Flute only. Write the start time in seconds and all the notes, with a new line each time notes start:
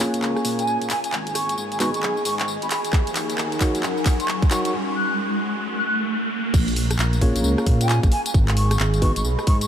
0.59 G#5
0.90 G#5
1.04 G#5
1.35 C#6
1.80 C#6
1.94 C#6
2.25 C#6
2.40 C#6
2.62 B5
2.71 B5
4.20 C#6
4.51 C#6
4.65 C#6
4.96 F#6
5.78 F#6
5.86 F#6
7.81 G#5
8.12 G#5
8.26 G#5
8.57 C#6
9.02 C#6
9.16 C#6
9.47 C#6
9.61 C#6